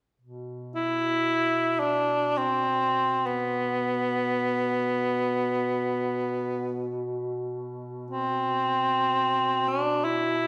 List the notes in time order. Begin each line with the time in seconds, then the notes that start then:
0.22 B2
0.75 E4
1.79 D4
2.37 C4
3.26 B3
8.10 C4
9.68 D4
10.04 E4